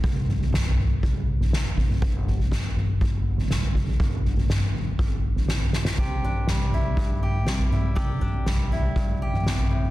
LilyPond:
<<
  \new Staff \with { instrumentName = "Steel-string acoustic guitar" } { \time 4/4 \key c \major \tempo 4 = 121 << { r1 | r1 | r1 | g'8 d'4 e'4 g'4 e'8 |
g'8 d'4 e'4 g'4. | } \\ { r1 | r1 | r1 | c4 g4 g,4 g4 |
c4 g4 g,4 b,8 a,8 | } >> }
  \new Staff \with { instrumentName = "Upright bass" } { \clef bass \time 4/4 \key c \major c,4 c,4 c,4 d,4 | g,,4 g,,4 g,,4 g,4 | g,,4 g,,4 g,,4 g,4 | c,8 g,16 r16 c,4 g,4 c4 |
c,8 g,16 r16 c,4 g,4 c4 | }
  \new DrumStaff \with { instrumentName = "Drums" } \drummode { \time 4/4 <bd tomfh>8 <tomfh toml>16 tomfh16 <sn toml>16 tomfh16 toml8 <bd tomfh>8. tomfh16 sn16 tomfh16 <bd tomfh>16 <tomfh toml>16 | <bd tomfh>8 <tomfh toml>16 tomfh16 <bd sn toml>16 tomfh16 toml8 <bd tomfh>8. tomfh16 sn16 tomfh16 <bd tomfh>16 <tomfh toml>16 | <bd tomfh>8 <tomfh toml>16 tomfh16 <sn toml>16 tomfh16 toml8 <bd tomfh>8. tomfh16 sn16 tomfh16 sn16 sn16 | <bd tomfh>8 toml8 <sn tomfh>8 tomfh8 bd16 tomfh8. sn16 tomfh16 toml8 |
<bd tomfh>8 toml8 <sn tomfh>8 tomfh8 bd16 tomfh8 toml16 sn16 tomfh8 toml16 | }
>>